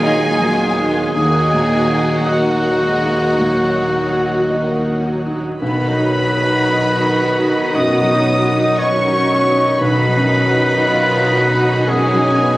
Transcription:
Already playing: D#2 A#2 D#3 F#3 D#4 F#4 G#4 D#5 G#5
0.03 D#3 G#3 D#4 F4 D#5
0.40 F#3
0.59 F#3 B3 D#6
0.77 D#4
0.87 D#5
1.14 D#2 D#3 F#3 A#3 D#4 F#4 G#4 G#5
1.43 D#4
1.53 A#2
1.71 D#5
1.90 F#4
2.26 D#3 F#4 D#5 F#5 D#6
2.65 F#4
2.83 G#3 D#6
3.01 D#4
3.10 D#5
3.37 A#2 F#3
3.65 D#4
3.76 D#4
3.93 F#3 D#5
4.13 F#4
4.50 D#3 D#5 D#6
4.87 F#4
5.06 F#3 D#6
5.26 D#4
5.34 D#5
5.61 B1 B2 D#3 F#3 B3 D#4 F#4 B4 B5
5.88 F#3 D#4
5.98 D#4
6.16 B3 D#4
6.34 F#4
6.43 D#4
6.68 B3 D#5
6.95 D#4 D#6
7.04 F#4
7.21 B3 D#5
7.39 D#4
7.49 D#4
7.74 F#2 B3 D#5 D#6
8.01 F#3 D#4
8.09 D#4
8.28 B3 D#4
8.44 F#4
8.54 D#4
8.78 B3 C#4 C#5 D#5 C#6
9.05 D#4 D#6
9.12 F#4
9.30 B3 D#5
9.47 D#4
9.56 D#4
9.80 B1 B2 D#3 F#3 B3 D#4 F#4 B4 B5
10.07 F#3 D#4
10.16 F#2
10.33 B3 D#4
10.50 F#4
10.59 D#4
10.85 B3 F4 D#5
11.11 D#4 D#6
11.20 F#4
11.37 B3 D#4 D#5
11.54 D#4
11.62 D#4 F#4
11.87 F#2 B3 C#4 G#4 G#5
12.13 F#3 D#4
12.22 D#4
12.38 B3 D#4

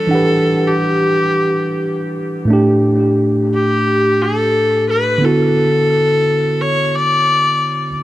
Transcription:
Already playing: A4
0.07 E3 D4 F#5
0.13 G4 B4
0.67 G4
2.45 A2 A3
2.51 D4 G4
3.54 G4
4.22 A4
4.90 B4
5.18 D3 B3
5.23 E4 F#4 A4
6.61 C#5
6.95 D5

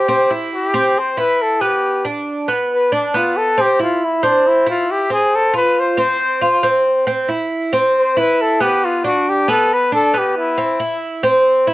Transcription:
Already playing: G4
0.08 C4
0.30 E4
0.55 G4
0.74 C4
0.99 C5
1.17 E4 B4
1.42 A4
1.61 B3 G4
2.05 D4
2.48 B3
2.73 B4
2.92 D4
3.14 B3 F4
3.37 A4
3.57 C4 G4
3.79 E4 F4
4.04 E4
4.23 C4 D4
4.47 E4
4.66 E4 F4
4.91 G4
5.10 C4 G#4
5.35 A4
5.54 F4 B4
5.80 C5
5.98 C4 C5
6.41 F4
6.63 C4
7.07 C4
7.28 E4
7.73 C4
7.97 C5
8.17 E4 B4
8.41 A4
8.60 B3 G4
8.85 F4
9.04 D4 F#4
9.29 G4
9.48 B3 A4
9.73 B4
9.92 D4 A4
10.14 B3
10.18 G4
10.38 E4
10.58 C4
10.80 E4
11.23 C4
11.67 E4

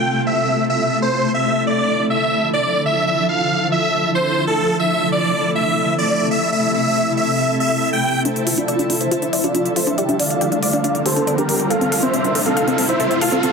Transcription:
Already playing: G5
0.26 E5
0.70 E5
1.02 C5
1.34 E5
1.67 D5
2.10 E5
2.53 D5
2.86 E5
3.07 E5
3.29 F5
3.72 E5
4.15 C5
4.47 A4
4.79 E5
5.12 D5
5.55 E5
5.98 D5
6.31 E5
6.52 E5
6.74 E5
7.17 E5
7.60 E5
7.93 G5
8.25 D4 C5 E5, closed hi-hat, riser
8.36 closed hi-hat
8.47 F4, open hi-hat
8.57 D4 F4 D5, closed hi-hat
8.68 D5, closed hi-hat
8.79 D4, closed hi-hat
8.90 D4, open hi-hat
9.00 C5 E5, closed hi-hat
9.11 F4, closed hi-hat
9.22 D4, closed hi-hat
9.33 D5, open hi-hat
9.44 D4 F4 D5, closed hi-hat
9.55 D4, closed hi-hat
9.65 closed hi-hat
9.76 F4 C5 E5, open hi-hat
9.87 D4, closed hi-hat
9.98 G4 D5 E5, closed hi-hat
10.09 D4, closed hi-hat
10.19 D4 D5 F5, open hi-hat
10.30 closed hi-hat
10.41 G4, closed hi-hat
10.52 D4, closed hi-hat
10.62 D5 F5, open hi-hat
10.73 D4, closed hi-hat
10.84 D4, closed hi-hat
10.95 closed hi-hat
11.05 G4 A4 C5, open hi-hat
11.16 D4, closed hi-hat
11.27 D5, closed hi-hat
11.38 D4 G4 A#4, closed hi-hat
11.49 D4, open hi-hat
11.60 closed hi-hat
11.70 A4 F5, closed hi-hat
11.81 C4, closed hi-hat
11.92 F5, open hi-hat
12.02 C4 C5 E5, closed hi-hat
12.14 C4, closed hi-hat
12.24 closed hi-hat
12.35 A4, open hi-hat
12.46 C4 A4 F5, closed hi-hat
12.57 F5, closed hi-hat
12.67 C4, closed hi-hat
12.78 C4, open hi-hat
12.89 C5 E5, closed hi-hat
13.00 A4, closed hi-hat
13.11 C4, closed hi-hat
13.21 A4 F5, open hi-hat
13.32 C4, closed hi-hat
13.43 C4 A4 F5, closed hi-hat

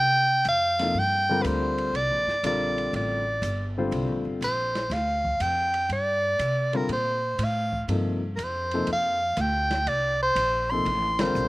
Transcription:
Already playing: C3
0.00 G5
0.45 F2 F5, hi-hat pedal, ride
0.79 C3 F3 A#3 D#4 A4, snare, ride
0.94 G2
0.99 G5
1.29 D3 G3 C4 F4 A#4
1.42 D2 B4, hi-hat pedal, ride
1.47 C5
1.78 ride
1.93 C2 D5, ride
2.10 A#1
2.27 G1, snare
2.43 A#1 D3 G3 C4 F4 A#4 D5, hi-hat pedal, ride
2.78 ride
2.93 A1 D5, ride
3.42 G1, hi-hat pedal, ride
3.78 D3 G3 C4 F4 C5
3.91 C2, ride
4.08 A#1
4.25 G1
4.41 A#1 C5, hi-hat pedal, ride
4.75 snare, ride
4.90 D2 F5, snare, ride
5.25 kick
5.40 F2 G5, hi-hat pedal, ride
5.74 ride
5.89 G2 D5, ride
6.39 C3, hi-hat pedal, ride
6.73 D3 G3 C4 F4 A#4, ride
6.89 A#2 C5, ride
7.38 A2, hi-hat pedal, ride
7.44 F5
7.72 kick
7.88 G2 C3 F3 A#3 D#4 A4, ride
8.36 F2 A#4, hi-hat pedal, ride
8.44 C5
8.71 C3 F3 A#3 D#4 A4, ride
8.87 F2, ride
8.92 F5
9.37 D2, hi-hat pedal, ride
9.41 G5
9.71 snare, ride
9.86 C2 D5, ride
10.22 C5
10.35 A#1, hi-hat pedal, ride
10.71 C3 F3 A#3 D#4 A4 C6
10.85 A1, ride
11.19 D3 G3 C4 F4 A#4 C5, snare, ride
11.35 B1, hi-hat pedal

